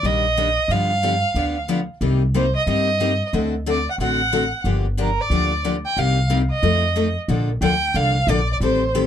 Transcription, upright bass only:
0.03 0.56 A#1 medium
0.68 1.21 G2 medium
1.34 1.87 D2 medium
2.01 2.54 C2 medium
2.67 3.19 G2 medium
3.33 3.86 D2 medium
3.98 4.51 A1 medium
4.64 5.17 G1 medium
5.30 5.83 D2 medium
5.97 6.49 C2 medium
6.63 7.15 F2 medium
7.28 7.55 A#1 medium
7.61 7.89 D2 medium
7.94 8.22 C2 medium
8.27 8.55 A#1 medium
8.60 9.07 A1 medium

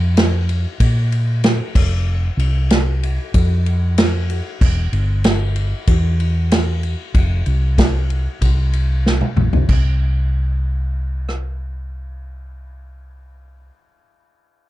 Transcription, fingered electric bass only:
0.00 0.65 F2 medium
0.80 1.60 A#2 medium
1.76 2.28 F1 medium
2.37 3.17 C2 medium
3.34 4.40 F2 medium
4.61 4.87 E1 medium
4.92 5.72 G1 medium
5.88 6.94 E2 medium
7.14 7.41 F1 medium
7.46 8.26 C2 medium
8.41 9.21 C2 medium
9.38 9.52 A#1 medium
9.53 9.67 C2 medium
9.69 13.69 C2 medium

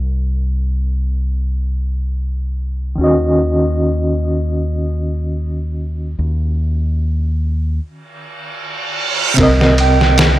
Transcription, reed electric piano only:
0.00 2.92 C3 medium
0.00 2.93 C4 medium
0.00 2.95 A#4 medium
0.00 2.96 D#5 medium
2.95 9.32 D#3 medium
2.95 9.34 C#4 medium
3.01 9.35 F#4 medium
3.01 9.37 D#5 medium
9.34 10.39 C3 medium
9.34 10.39 C4 medium
9.40 10.39 A#4 medium
9.40 10.39 D#5 medium

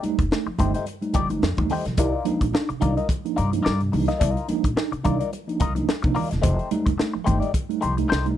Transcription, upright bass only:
0.19 0.29 F1 medium
0.47 muted upright bass stroke soft
0.59 0.72 G1 medium
1.15 1.37 G1 medium
1.43 1.55 F2 loud
1.58 1.68 D#2 medium
1.86 1.98 B1 medium
1.98 2.11 C2 loud
2.42 2.52 A#1 medium
2.70 muted upright bass stroke soft
2.83 2.95 C2 medium
3.39 3.61 G2 medium
3.66 3.88 G2 loud
3.94 4.06 C2 medium
4.21 4.34 C2 loud
4.64 4.74 A#1 medium
4.93 muted upright bass stroke soft
5.06 5.18 C2 medium
5.61 5.83 C2 medium
6.04 6.14 C3 medium
6.32 6.42 E1 medium
6.44 6.56 F1 loud
6.87 6.97 F1 medium
7.16 muted upright bass stroke soft
7.27 7.40 G1 medium
7.84 8.06 C2 medium
8.12 8.33 C2 medium

